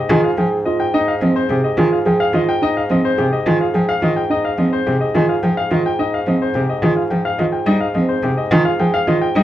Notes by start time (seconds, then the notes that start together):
Already playing: G#2 D#5
0.09 D#3 F4 G#4
0.24 F5
0.37 F3 G#4 G5
0.65 F4 D#5
0.80 G5
0.94 D#4 D#5
1.08 F5
1.21 F3 C4 D#5
1.36 C5
1.50 C3 G4 G#4
1.64 D#5
1.78 D#3 F4 G#4
1.93 F5
2.06 F3 G#4 G5
2.20 F5
2.33 D#3 F4 D#5
2.49 G5
2.62 D#4 D#5
2.77 F5
2.90 F3 C4 D#5
3.05 C5
3.18 C3 G4 G#4
3.33 D#5
3.46 D#3 F4 G#4
3.61 F5
3.74 F3 G#4 G5
3.89 F5
4.02 D#3 F4 D#5
4.16 G5
4.30 D#4 D#5
4.45 F5
4.58 F3 C4 D#5
4.73 C5
4.86 C3 G4 G#4
5.00 D#5
5.15 D#3 F4 G#4
5.29 F5
5.43 F3 G#4 G5
5.57 F5
5.71 D#3 F4 D#5
5.86 G5
5.99 D#4 D#5
6.14 F5
6.26 F3 C4 D#5
6.42 C5
6.55 C3 G4 G#4
6.70 D#5
6.83 D#3 F4 G#4
6.97 F5
7.11 F3 G#4 G5
7.25 F5
7.38 D#3 F4 D#5
7.52 G5
7.66 G3 D#4 D#5
7.81 F5
7.95 F3 C4 D#5
8.09 C5
8.23 C3 G4 G#4
8.37 D#5
8.51 D#3 F4 G#4
8.65 F5
8.79 F3 G#4 G5
8.94 F5
9.07 D#3 F4 D#5
9.21 G5
9.35 G3 D#4 D#5